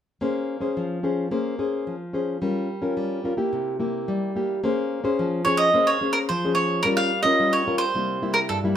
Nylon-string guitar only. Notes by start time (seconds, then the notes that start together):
0.21 A#3 C#4 G#4 C5
0.61 C#4 G#4 C5
0.77 F3
1.03 C#4 G#4 C5
1.31 A#3 C#4 G#4 C5
1.59 C#4 G#4 C5
1.87 F3
2.13 C#4 G#4 C5
2.42 G3 C#4 F4 A#4
2.82 C#4 F4 A#4
2.97 G3
3.24 C#4 F4 A#4
3.37 A#3 E4 G4
3.53 C3
3.80 A#3 E4 G4
4.08 G3
4.36 A#3 E4 G4
4.64 A#3 C#4 G#4 C5
5.04 C#4 G#4 C5
5.19 F3
5.46 C#4 G#4 C5
5.74 A#3 C#4 G#4 C5
6.01 C#4 G#4 C5
6.30 F3
6.45 C#4 G#4 C5
6.85 G3 C#4 F4 A#4
7.25 C#4 F4 A#4
7.40 G3
7.67 C#4 F4 A#4
7.95 C3 G3 A#3 E4
8.22 G3 A#3 E4
8.50 G2
8.64 G3 A#3 E4